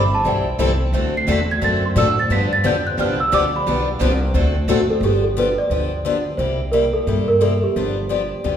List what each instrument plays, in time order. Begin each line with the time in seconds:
Already playing: upright bass G1, celesta B5
0.14 celesta A5
0.25 upright bass B1, steel-string acoustic guitar E3 G3 C4 E4 A4, celesta G5
0.59 upright bass C2, steel-string acoustic guitar E3 G3 C4 E4 A4
0.92 upright bass D2, steel-string acoustic guitar D3 A3 C4 F#4 A4
1.17 celesta C7
1.28 upright bass E2, steel-string acoustic guitar D3 A3 C4 F#4 A4
1.32 celesta B6
1.51 celesta G#6
1.61 upright bass F#2, steel-string acoustic guitar D3 A3 C4 F#4 A4, celesta A6
1.86 celesta C6
1.96 upright bass A2, steel-string acoustic guitar D3 A3 C4 F#4 A4, celesta E6
2.19 celesta A6
2.30 upright bass G2, steel-string acoustic guitar D3 F3 B3 D4 G4, celesta B6
2.53 celesta A6
2.64 upright bass F2, steel-string acoustic guitar D3 F3 B3 D4 G4, celesta G6
2.87 celesta F#6
2.98 upright bass C2, steel-string acoustic guitar D3 F3 B3 D4 G4, celesta F6
3.20 celesta E6
3.32 upright bass D2, steel-string acoustic guitar D3 F3 B3 D4 G4, celesta D6
3.56 celesta B5
3.67 upright bass B1, steel-string acoustic guitar D3 F3 B3 D4 G4
4.00 upright bass C2, steel-string acoustic guitar D3 F3 B3 D4 G4
4.34 upright bass D2, steel-string acoustic guitar D3 A3 C4 F#4 A4
4.68 upright bass A1, steel-string acoustic guitar D3 A3 C4 F#4 A4, celesta F#4
4.88 celesta A4, muted upright bass stroke
5.01 upright bass G1, steel-string acoustic guitar D3 F3 B3 D4 G4, celesta G4
5.24 celesta A4
5.37 steel-string acoustic guitar D3 F3 B3 D4 G4, celesta B4
5.58 celesta D5
5.70 upright bass D2, steel-string acoustic guitar D3 F3 B3 D4 G4
6.05 steel-string acoustic guitar D3 F3 B3 D4 G4
6.37 upright bass C2, steel-string acoustic guitar C3 G3 A#3 E4 G4, celesta C5
6.72 steel-string acoustic guitar C3 G3 A#3 E4 G4, celesta A#4
6.93 celesta A4
7.07 upright bass G2, steel-string acoustic guitar C3 G3 A#3 E4 G4
7.28 celesta A#4
7.41 steel-string acoustic guitar C3 G3 A#3 E4 G4, celesta A4
7.63 celesta G4
7.76 upright bass G1, steel-string acoustic guitar D3 F3 B3 D4 G4
8.09 steel-string acoustic guitar D3 F3 B3 D4 G4
8.44 upright bass D2, steel-string acoustic guitar D3 F3 B3 D4 G4